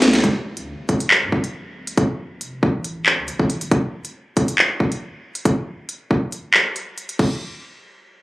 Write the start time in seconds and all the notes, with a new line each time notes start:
0.02 D2, snare, closed hi-hat
0.08 snare
0.13 snare, closed hi-hat
0.19 snare
0.24 D1, kick, closed hi-hat
0.57 D2, closed hi-hat
0.73 D1
0.89 D1, kick, closed hi-hat
1.00 closed hi-hat
1.11 clap
1.22 A2
1.32 D1, kick
1.44 closed hi-hat
1.87 closed hi-hat
1.97 D1, kick, closed hi-hat
2.41 F1, closed hi-hat
2.63 A1, kick
2.84 closed hi-hat
3.06 clap
3.18 D2
3.28 A1, closed hi-hat
3.39 A1, kick
3.50 closed hi-hat
3.61 F1, closed hi-hat
3.71 kick, closed hi-hat
4.05 closed hi-hat
4.37 kick, closed hi-hat
4.48 closed hi-hat
4.59 clap
4.80 kick
4.92 closed hi-hat
5.35 closed hi-hat
5.45 kick, closed hi-hat
5.89 closed hi-hat
6.11 kick
6.32 closed hi-hat
6.54 clap
6.76 closed hi-hat
6.98 closed hi-hat
7.09 closed hi-hat
7.19 kick, crash